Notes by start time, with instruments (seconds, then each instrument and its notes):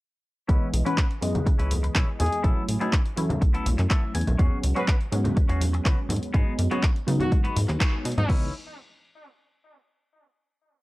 0.48 analog synth bass C#2, analog polysynth E3 G#3 B3 D#5, clean electric guitar C#4 E4 B4, kick, closed hi-hat
0.73 analog synth bass B1, open hi-hat, tambourine
0.85 analog polysynth E3 G#3 B3 C#4, clean electric guitar C#4 E4 B4, trumpet section B4, closed hi-hat
0.98 trumpet section B4, kick, clap
1.11 closed hi-hat
1.21 analog synth bass F#2, analog polysynth E3 G#3 B3 D#5, muted clean electric guitar stroke, open hi-hat, tambourine
1.34 closed hi-hat, tambourine, high conga, low conga
1.46 analog synth bass C#3, muted clean electric guitar stroke, kick, closed hi-hat, tambourine
1.59 analog synth bass C#2, clean electric guitar C#4 E4 B4, closed hi-hat
1.71 open hi-hat, tambourine, low conga
1.83 muted clean electric guitar stroke, closed hi-hat, tambourine
1.95 analog synth bass B1, clean electric guitar C#4 E4 G#4, kick, clap, closed hi-hat
2.19 analog synth bass E2, trumpet section G#4, muted clean electric guitar stroke, open hi-hat, tambourine, low conga
2.26 closed hi-hat
2.32 closed hi-hat, tambourine
2.43 analog synth bass B1, analog polysynth F#3 A3 C#4 E4, clean electric guitar B3 E4 A4, kick, closed hi-hat
2.68 analog synth bass A1, open hi-hat, tambourine
2.80 analog polysynth F#3 A3 C#4 D#4, clean electric guitar B3 E4 G#4, closed hi-hat, tambourine
2.93 kick, clap
3.06 closed hi-hat
3.16 analog synth bass E2, analog polysynth F#3 A3 C#4 E4, muted clean electric guitar stroke, open hi-hat, tambourine
3.29 closed hi-hat, tambourine, high conga, low conga
3.41 analog synth bass B1, muted clean electric guitar stroke, kick, closed hi-hat, tambourine
3.54 clean electric guitar B3 E4 A4, closed hi-hat
3.66 analog synth bass B1, open hi-hat, tambourine, low conga
3.78 analog synth bass F#2, muted clean electric guitar stroke, clap, closed hi-hat, tambourine
3.90 clean electric guitar B3 E4 A4 E5, kick, clap, closed hi-hat
4.14 analog synth bass E2, clean electric guitar G#5, muted clean electric guitar stroke, open hi-hat, tambourine
4.21 closed hi-hat
4.27 analog synth bass B1, closed hi-hat, tambourine, low conga
4.38 analog synth bass E2, analog polysynth F#3 G#3 B3 C#4, clean electric guitar C#4 F#4 G#4, kick, closed hi-hat
4.63 analog synth bass C#2, open hi-hat, tambourine
4.75 analog polysynth F#3 G#3 B3 C#4, clean electric guitar C#4 F#4 G#4, trumpet section B4, closed hi-hat, tambourine
4.88 trumpet section B4, kick, clap
5.01 closed hi-hat
5.11 analog synth bass G#2, analog polysynth F#3 G#3 B3 C#4, muted clean electric guitar stroke, open hi-hat, tambourine
5.24 closed hi-hat, tambourine, high conga, low conga
5.36 analog synth bass E1, muted clean electric guitar stroke, kick, closed hi-hat, tambourine
5.49 analog synth bass E2, clean electric guitar C#4 F#4 G#4, closed hi-hat
5.60 open hi-hat, tambourine, low conga
5.73 muted clean electric guitar stroke, closed hi-hat, tambourine
5.85 analog synth bass C#2, clean electric guitar C#4 F#4 B4, kick, clap, closed hi-hat
6.09 analog synth bass G#2, muted clean electric guitar stroke, open hi-hat, tambourine, low conga
6.16 closed hi-hat
6.22 closed hi-hat, tambourine
6.33 analog synth bass G#2, analog polysynth F#3 G#3 B3 D#4, clean electric guitar B3 F#4 G#4, kick, closed hi-hat, tambourine
6.58 analog synth bass F#2, open hi-hat, tambourine
6.71 analog polysynth F#3 G#3 B3 C#4, clean electric guitar B3 F#4 G#4, closed hi-hat, tambourine
6.83 kick, clap
6.96 closed hi-hat
7.07 analog synth bass C#3, analog polysynth F#3 G#3 B3 D#4, muted clean electric guitar stroke, open hi-hat, tambourine
7.20 trumpet section F#4, closed hi-hat, tambourine, high conga, low conga
7.31 analog synth bass G#2, muted clean electric guitar stroke, kick, closed hi-hat, tambourine
7.44 clean electric guitar B3 F#4 B4, closed hi-hat
7.56 analog synth bass G#2, open hi-hat, tambourine, low conga
7.68 analog synth bass D#2, muted clean electric guitar stroke, clap, closed hi-hat, tambourine
7.80 clean electric guitar B3 F#4 G#4, kick, clap, closed hi-hat
8.04 analog synth bass B2, muted clean electric guitar stroke, open hi-hat, tambourine
8.12 closed hi-hat
8.18 analog synth bass G#2, trumpet section D#4, closed hi-hat, tambourine, low conga
8.28 analog synth bass C#2, analog polysynth E3 G#3 B3 D#4, clean electric guitar C#4 E4 B4, kick, crash